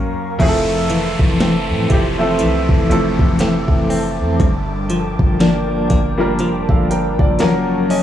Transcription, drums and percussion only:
0.40 kick loud
0.40 closed hi-hat medium
0.40 crash loud
0.90 closed hi-hat medium
1.19 kick loud
1.40 snare loud
1.40 closed hi-hat medium
1.90 kick medium
1.90 closed hi-hat medium
2.39 closed hi-hat medium
2.69 kick loud
2.91 closed hi-hat medium
3.19 kick loud
3.39 snare loud
3.39 closed hi-hat medium
3.68 kick medium
3.90 open hi-hat medium
4.40 kick loud
4.40 closed hi-hat medium
4.90 closed hi-hat medium
5.19 kick medium
5.40 snare loud
5.40 closed hi-hat medium
5.90 kick medium
5.90 closed hi-hat medium
6.39 closed hi-hat medium
6.69 kick medium
6.91 closed hi-hat medium
7.19 kick loud
7.39 snare loud
7.39 closed hi-hat medium
7.90 open hi-hat medium

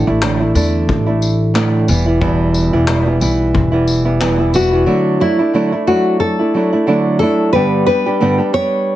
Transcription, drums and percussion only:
0.22 clap loud
0.55 tambourine medium
0.89 kick loud
1.22 tambourine medium
1.56 clap loud
1.88 tambourine medium
2.21 kick loud
2.54 tambourine medium
2.88 clap loud
3.21 tambourine medium
3.55 kick loud
3.88 tambourine medium
4.21 clap loud
4.54 tambourine medium

